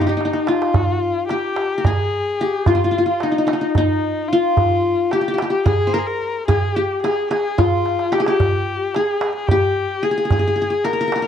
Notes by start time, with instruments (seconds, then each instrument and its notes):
0.01 qanun D#4, kamancheh F4
0.07 kamancheh D#4, qanun D#4 G4
0.17 qanun D#4, darbuka tek
0.25 qanun D#4
0.33 qanun D#4, darbuka ka
0.47 kamancheh F4, qanun F4, darbuka tek
0.62 darbuka ka
0.74 darbuka dum
1.28 kamancheh G4, qanun G4, darbuka tek
1.56 darbuka tek
1.78 qanun A#4
1.84 kamancheh G#4, qanun G#4, darbuka dum
2.39 qanun G4, darbuka ka
2.66 qanun F4, kamancheh F4, darbuka dum
2.75 qanun F4
2.84 qanun F4
2.91 qanun F4
2.98 qanun F4
3.06 qanun F4, kamancheh F4
3.20 kamancheh D#4, qanun D#4, darbuka tek
3.32 qanun D#4
3.38 qanun D#4
3.47 qanun D#4, darbuka tek
3.53 qanun D#4
3.61 qanun D#4
3.75 kamancheh D#4, qanun D#4, darbuka dum
4.29 kamancheh F4, qanun F4, darbuka ka
4.57 darbuka dum
5.11 kamancheh G4, qanun G4, darbuka tek
5.21 qanun G4
5.28 qanun G4
5.34 qanun G4
5.38 qanun G4, darbuka tek
5.50 qanun G4, kamancheh G4
5.66 qanun G#4, kamancheh G#4, darbuka dum
5.87 qanun C5
5.94 kamancheh A#4, qanun A#4
5.98 kamancheh G#4
6.06 kamancheh A#4
6.22 darbuka ka
6.48 kamancheh G#4, qanun G#4, darbuka dum
6.75 kamancheh G4, qanun G4
7.02 kamancheh G#4, qanun G#4, darbuka tek
7.31 qanun G#4, kamancheh G#4, darbuka tek
7.58 qanun F4, kamancheh F4, darbuka dum
7.86 darbuka tek
7.99 darbuka ka
8.12 qanun G4, kamancheh G4, darbuka tek
8.20 qanun G#4
8.26 qanun G4, kamancheh G4, darbuka ka
8.40 darbuka dum
8.95 kamancheh G#4, qanun G#4, darbuka tek
9.21 darbuka tek
9.35 kamancheh G#4
9.47 kamancheh G4, darbuka dum
9.51 qanun G4
10.03 qanun G#4, kamancheh G#4, darbuka ka
10.11 qanun G#4
10.18 qanun G#4
10.25 qanun G#4
10.31 qanun G#4, darbuka dum
10.39 qanun G#4
10.48 qanun G#4
10.56 qanun G#4
10.62 qanun G#4
10.70 qanun G#4
10.84 qanun A#4, kamancheh A#4, darbuka tek
10.93 qanun A#4
11.01 qanun A#4
11.08 qanun A#4
11.12 qanun A#4, darbuka tek
11.22 qanun A#4